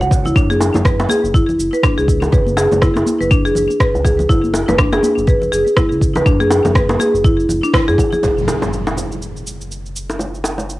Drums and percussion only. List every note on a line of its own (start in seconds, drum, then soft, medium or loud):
0.01 low bongo medium
0.01 shaker soft
0.11 kick medium
0.11 low bongo medium
0.11 shaker medium
0.25 muted conga soft
0.25 low conga loud
0.25 shaker soft
0.36 kick loud
0.36 low bongo medium
0.36 shaker medium
0.50 high conga medium
0.50 shaker soft
0.60 high bongo medium
0.60 muted conga medium
0.60 shaker medium
0.74 high bongo medium
0.74 low bongo medium
0.74 high conga medium
0.74 low conga medium
0.74 shaker soft
0.85 kick loud
0.85 cross-stick loud
0.85 shaker medium
1.00 high bongo loud
1.00 muted conga soft
1.00 high conga medium
1.00 shaker soft
1.09 low bongo medium
1.09 high conga loud
1.09 shaker medium
1.25 shaker soft
1.34 kick loud
1.34 muted conga medium
1.34 shaker medium
1.49 low conga medium
1.49 shaker soft
1.60 shaker medium
1.73 muted conga soft
1.73 shaker soft
1.83 kick loud
1.83 cross-stick loud
1.83 high conga medium
1.83 shaker medium
1.99 shaker soft
2.08 kick medium
2.08 shaker medium
2.22 high bongo medium
2.22 muted conga soft
2.22 low conga medium
2.22 shaker soft
2.32 kick loud
2.32 low bongo medium
2.32 shaker medium
2.46 high conga medium
2.46 shaker soft
2.57 high bongo loud
2.57 muted conga medium
2.57 shaker medium
2.71 low bongo medium
2.71 high conga medium
2.71 low conga medium
2.71 shaker soft
2.82 kick loud
2.82 cross-stick loud
2.82 shaker soft
2.96 high bongo medium
2.96 muted conga soft
2.96 high conga medium
2.96 shaker soft
3.06 high conga loud
3.06 shaker medium
3.22 shaker soft
3.31 kick loud
3.31 muted conga medium
3.31 shaker medium
3.46 shaker soft
3.55 low conga medium
3.55 shaker medium
3.70 muted conga soft
3.70 shaker soft
3.80 kick loud
3.80 cross-stick loud
3.80 low conga medium
3.80 shaker soft
3.95 low bongo medium
3.95 shaker soft
4.05 kick medium
4.05 low bongo medium
4.05 shaker medium
4.19 muted conga soft
4.19 low conga loud
4.19 shaker soft
4.29 kick loud
4.29 low bongo medium
4.29 shaker medium
4.44 high conga medium
4.44 shaker soft
4.54 high bongo medium
4.54 muted conga soft
4.54 shaker medium
4.69 high bongo medium
4.69 low bongo medium
4.69 high conga medium
4.69 low conga medium
4.69 shaker soft
4.79 kick loud
4.79 cross-stick loud
4.79 shaker soft
4.92 high bongo loud
4.92 muted conga soft
4.92 high conga medium
4.92 shaker soft
5.03 low bongo medium
5.03 high conga loud
5.03 shaker medium
5.18 shaker soft
5.27 kick loud
5.27 muted conga medium
5.27 shaker medium
5.42 low conga medium
5.42 shaker soft
5.53 shaker medium
5.66 muted conga soft
5.66 shaker soft
5.76 kick loud
5.76 cross-stick loud
5.76 high conga medium
5.76 shaker soft
5.92 shaker soft
6.01 kick medium
6.01 shaker medium
6.15 high bongo medium
6.15 muted conga medium
6.15 low conga loud
6.15 shaker soft
6.26 kick loud
6.26 low bongo medium
6.26 shaker medium
6.41 high conga medium
6.41 shaker soft
6.50 high bongo loud
6.50 muted conga medium
6.50 shaker medium
6.65 high bongo medium
6.65 low bongo medium
6.65 high conga medium
6.65 low conga loud
6.65 shaker soft
6.75 kick loud
6.75 cross-stick loud
6.75 shaker soft
6.89 high bongo loud
6.89 muted conga soft
6.89 high conga medium
6.89 shaker soft
6.99 low bongo medium
6.99 high conga medium
6.99 shaker medium
7.15 shaker soft
7.24 kick loud
7.24 muted conga medium
7.24 shaker medium
7.40 shaker soft
7.49 low conga medium
7.49 shaker medium
7.63 muted conga soft
7.63 shaker soft
7.74 kick loud
7.74 cross-stick loud
7.74 low conga medium
7.74 shaker medium
7.89 low bongo medium
7.89 shaker soft
7.98 kick medium
7.98 low bongo medium
7.98 shaker medium
8.12 muted conga medium
8.12 low conga loud
8.12 shaker soft
8.23 low bongo medium
8.23 shaker medium
8.38 shaker soft
8.48 high bongo medium
8.48 shaker medium
8.62 high bongo medium
8.62 low bongo medium
8.62 shaker soft
8.73 shaker soft
8.87 high bongo loud
8.87 shaker soft
8.97 low bongo medium
8.97 shaker medium
9.12 shaker soft
9.22 shaker medium
9.37 shaker soft
9.47 shaker medium
9.61 shaker soft
9.72 shaker soft
9.86 shaker soft
9.96 shaker medium
10.10 high bongo medium
10.10 shaker soft
10.19 low bongo medium
10.19 shaker medium
10.35 shaker soft
10.44 high bongo loud
10.44 shaker medium
10.58 low bongo medium
10.58 shaker soft
10.70 shaker medium